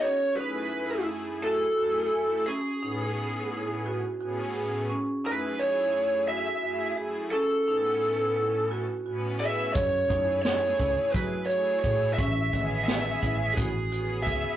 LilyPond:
<<
  \new Staff \with { instrumentName = "Lead electric guitar" } { \time 7/8 \key fis \dorian \tempo 4 = 87 cis''8 b'4 r8 a'4. | gis'2 r4. | r8 b'8 cis''4 e''4 r8 | a'2 r4 e''8 |
cis''4 cis''4 b'8 cis''8 cis''8 | e''4 e''4 gis'4 e''8 | }
  \new Staff \with { instrumentName = "Marimba" } { \time 7/8 \key fis \dorian cis'8 dis'4 e'8 fis'8 fis'8 gis''8 | cis'8 dis'4 e'8 fis'8 fis'8 gis'8 | cis'8 dis'4 e'8 fis'8 fis'8 gis'8 | cis'8 dis'4 e'8 fis'8 fis'8 gis'8 |
cis'8 dis'4 e'8 fis'8 fis'8 gis'8 | cis'8 dis4 e'8 fis'8 fis'8 gis'8 | }
  \new Staff \with { instrumentName = "Analog synth pad" } { \time 7/8 \key fis \dorian r8 <fis, a e' gis'>8 <fis, a e' gis'>4. <fis, a e' gis'>8 <fis, a e' a'>8 | r8 <a, b cis' gis'>4. r8 <a, b cis' gis'>4 | r8 <fis, a e' gis'>8 <fis, a e' gis'>4. <fis, a e' gis'>8 <fis, a e' gis'>8 | r8 <a, b cis' a'>4. r8 <a, b cis' b'>4 |
r8 <a e' gis'>8 <a e' gis'>4. <a e' gis'>8 <a e' gis'>8 | r8 <b cis' gis'>4. r8 <b cis' gis'>4 | }
  \new Staff \with { instrumentName = "Fretless electric bass" } { \clef bass \time 7/8 \key fis \dorian r2. r8 | r2. r8 | r2. r8 | r2. r8 |
fis,8 fis,4 cis,16 r16 fis4 a,8 | a,,8 a,,4 a,,8 a,,4 cis,16 r16 | }
  \new DrumStaff \with { instrumentName = "Drums" } \drummode { \time 7/8 r4 r4 r4. | r4 r4 r4. | r4 r4 r4. | r4 r4 r4. |
<hh bd>8 <hh bd>8 <hh sn>8 <hh bd>8 <hh bd>8 hh8 <hh bd>8 | <hh bd>8 <hh bd>8 <hh sn>8 <hh bd>8 <hh bd>8 hh8 <hh bd>8 | }
>>